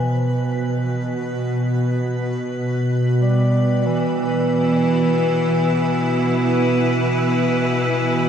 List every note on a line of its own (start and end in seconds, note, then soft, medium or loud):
0.00 8.29 B2 medium
0.00 0.65 E3 medium
0.00 8.29 B4 medium
3.21 3.88 G3 loud
3.84 8.29 E3 medium
3.84 6.38 E3 loud
4.57 8.29 E4 medium
4.86 8.29 B3 medium
6.39 8.29 E3 medium
6.39 8.29 B4 medium